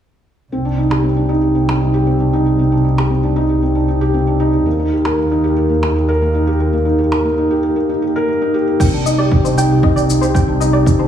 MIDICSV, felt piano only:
0, 0, Header, 1, 2, 480
1, 0, Start_track
1, 0, Key_signature, -3, "minor"
1, 0, Tempo, 517241
1, 488, Time_signature, 4, 2, 24, 8
1, 10280, End_track
2, 0, Start_track
2, 0, Title_t, "Felt piano"
2, 0, Program_c, 0, 0
2, 486, Note_on_c, 0, 60, 61
2, 601, Note_off_c, 0, 60, 0
2, 602, Note_on_c, 0, 62, 57
2, 636, Control_c, 0, 64, 127
2, 718, Note_on_c, 0, 63, 58
2, 719, Note_off_c, 0, 62, 0
2, 836, Note_on_c, 0, 67, 71
2, 837, Note_off_c, 0, 63, 0
2, 956, Note_off_c, 0, 67, 0
2, 956, Note_on_c, 0, 60, 63
2, 1030, Note_off_c, 0, 60, 0
2, 1080, Note_on_c, 0, 62, 62
2, 1197, Note_on_c, 0, 63, 76
2, 1198, Note_off_c, 0, 62, 0
2, 1271, Note_off_c, 0, 63, 0
2, 1316, Note_on_c, 0, 67, 51
2, 1436, Note_off_c, 0, 67, 0
2, 1437, Note_on_c, 0, 60, 63
2, 1557, Note_off_c, 0, 60, 0
2, 1561, Note_on_c, 0, 62, 54
2, 1678, Note_on_c, 0, 63, 58
2, 1679, Note_off_c, 0, 62, 0
2, 1797, Note_off_c, 0, 63, 0
2, 1799, Note_on_c, 0, 67, 80
2, 1918, Note_off_c, 0, 67, 0
2, 1919, Note_on_c, 0, 60, 70
2, 1992, Note_off_c, 0, 60, 0
2, 2041, Note_on_c, 0, 62, 61
2, 2158, Note_off_c, 0, 62, 0
2, 2165, Note_on_c, 0, 63, 80
2, 2235, Note_off_c, 0, 63, 0
2, 2283, Note_on_c, 0, 67, 63
2, 2399, Note_off_c, 0, 67, 0
2, 2403, Note_on_c, 0, 60, 67
2, 2520, Note_off_c, 0, 60, 0
2, 2523, Note_on_c, 0, 62, 61
2, 2640, Note_off_c, 0, 62, 0
2, 2640, Note_on_c, 0, 63, 57
2, 2758, Note_off_c, 0, 63, 0
2, 2763, Note_on_c, 0, 67, 74
2, 2879, Note_off_c, 0, 67, 0
2, 2880, Note_on_c, 0, 60, 62
2, 2952, Note_off_c, 0, 60, 0
2, 3001, Note_on_c, 0, 62, 61
2, 3118, Note_off_c, 0, 62, 0
2, 3119, Note_on_c, 0, 63, 81
2, 3192, Note_off_c, 0, 63, 0
2, 3238, Note_on_c, 0, 67, 55
2, 3357, Note_off_c, 0, 67, 0
2, 3361, Note_on_c, 0, 60, 64
2, 3478, Note_off_c, 0, 60, 0
2, 3480, Note_on_c, 0, 62, 60
2, 3598, Note_off_c, 0, 62, 0
2, 3603, Note_on_c, 0, 63, 64
2, 3719, Note_off_c, 0, 63, 0
2, 3722, Note_on_c, 0, 67, 90
2, 3839, Note_off_c, 0, 67, 0
2, 3841, Note_on_c, 0, 60, 70
2, 3913, Note_off_c, 0, 60, 0
2, 3964, Note_on_c, 0, 62, 63
2, 4080, Note_off_c, 0, 62, 0
2, 4081, Note_on_c, 0, 63, 84
2, 4153, Note_off_c, 0, 63, 0
2, 4203, Note_on_c, 0, 67, 61
2, 4319, Note_off_c, 0, 67, 0
2, 4324, Note_on_c, 0, 58, 67
2, 4340, Control_c, 0, 64, 0
2, 4440, Note_off_c, 0, 58, 0
2, 4448, Note_on_c, 0, 63, 61
2, 4484, Control_c, 0, 64, 127
2, 4562, Note_off_c, 0, 63, 0
2, 4567, Note_on_c, 0, 67, 59
2, 4682, Note_off_c, 0, 67, 0
2, 4687, Note_on_c, 0, 70, 83
2, 4802, Note_off_c, 0, 70, 0
2, 4809, Note_on_c, 0, 58, 70
2, 4877, Note_off_c, 0, 58, 0
2, 4932, Note_on_c, 0, 63, 69
2, 5044, Note_off_c, 0, 63, 0
2, 5047, Note_on_c, 0, 67, 78
2, 5116, Note_off_c, 0, 67, 0
2, 5165, Note_on_c, 0, 70, 61
2, 5281, Note_off_c, 0, 70, 0
2, 5285, Note_on_c, 0, 58, 67
2, 5400, Note_off_c, 0, 58, 0
2, 5410, Note_on_c, 0, 63, 61
2, 5523, Note_off_c, 0, 63, 0
2, 5531, Note_on_c, 0, 67, 68
2, 5644, Note_off_c, 0, 67, 0
2, 5647, Note_on_c, 0, 70, 90
2, 5761, Note_off_c, 0, 70, 0
2, 5768, Note_on_c, 0, 58, 71
2, 5836, Note_off_c, 0, 58, 0
2, 5887, Note_on_c, 0, 63, 63
2, 6002, Note_off_c, 0, 63, 0
2, 6006, Note_on_c, 0, 67, 82
2, 6075, Note_off_c, 0, 67, 0
2, 6125, Note_on_c, 0, 70, 67
2, 6241, Note_off_c, 0, 70, 0
2, 6244, Note_on_c, 0, 58, 66
2, 6358, Note_on_c, 0, 63, 64
2, 6360, Note_off_c, 0, 58, 0
2, 6477, Note_off_c, 0, 63, 0
2, 6482, Note_on_c, 0, 67, 69
2, 6599, Note_off_c, 0, 67, 0
2, 6605, Note_on_c, 0, 70, 82
2, 6720, Note_off_c, 0, 70, 0
2, 6723, Note_on_c, 0, 58, 70
2, 6794, Note_off_c, 0, 58, 0
2, 6847, Note_on_c, 0, 63, 65
2, 6962, Note_off_c, 0, 63, 0
2, 6965, Note_on_c, 0, 67, 81
2, 7035, Note_off_c, 0, 67, 0
2, 7081, Note_on_c, 0, 70, 59
2, 7198, Note_off_c, 0, 70, 0
2, 7200, Note_on_c, 0, 58, 71
2, 7318, Note_off_c, 0, 58, 0
2, 7326, Note_on_c, 0, 63, 65
2, 7441, Note_off_c, 0, 63, 0
2, 7444, Note_on_c, 0, 67, 69
2, 7560, Note_off_c, 0, 67, 0
2, 7571, Note_on_c, 0, 70, 95
2, 7683, Note_off_c, 0, 70, 0
2, 7685, Note_on_c, 0, 58, 72
2, 7755, Note_off_c, 0, 58, 0
2, 7810, Note_on_c, 0, 63, 67
2, 7923, Note_off_c, 0, 63, 0
2, 7926, Note_on_c, 0, 67, 86
2, 7995, Note_off_c, 0, 67, 0
2, 8048, Note_on_c, 0, 70, 69
2, 8162, Note_off_c, 0, 70, 0
2, 8164, Note_on_c, 0, 60, 70
2, 8180, Control_c, 0, 64, 0
2, 8280, Note_off_c, 0, 60, 0
2, 8287, Note_on_c, 0, 62, 65
2, 8339, Control_c, 0, 64, 127
2, 8401, Note_off_c, 0, 62, 0
2, 8409, Note_on_c, 0, 63, 64
2, 8521, Note_on_c, 0, 67, 83
2, 8522, Note_off_c, 0, 63, 0
2, 8638, Note_off_c, 0, 67, 0
2, 8647, Note_on_c, 0, 60, 73
2, 8716, Note_off_c, 0, 60, 0
2, 8771, Note_on_c, 0, 62, 69
2, 8883, Note_off_c, 0, 62, 0
2, 8887, Note_on_c, 0, 63, 86
2, 8956, Note_off_c, 0, 63, 0
2, 9012, Note_on_c, 0, 67, 64
2, 9124, Note_off_c, 0, 67, 0
2, 9130, Note_on_c, 0, 60, 74
2, 9243, Note_off_c, 0, 60, 0
2, 9244, Note_on_c, 0, 62, 61
2, 9360, Note_off_c, 0, 62, 0
2, 9370, Note_on_c, 0, 63, 72
2, 9483, Note_off_c, 0, 63, 0
2, 9487, Note_on_c, 0, 67, 95
2, 9602, Note_off_c, 0, 67, 0
2, 9602, Note_on_c, 0, 60, 72
2, 9673, Note_off_c, 0, 60, 0
2, 9723, Note_on_c, 0, 62, 69
2, 9839, Note_off_c, 0, 62, 0
2, 9843, Note_on_c, 0, 63, 87
2, 9914, Note_off_c, 0, 63, 0
2, 9965, Note_on_c, 0, 67, 70
2, 10080, Note_off_c, 0, 67, 0
2, 10082, Note_on_c, 0, 60, 74
2, 10199, Note_off_c, 0, 60, 0
2, 10204, Note_on_c, 0, 62, 65
2, 10280, Note_off_c, 0, 62, 0
2, 10280, End_track
0, 0, End_of_file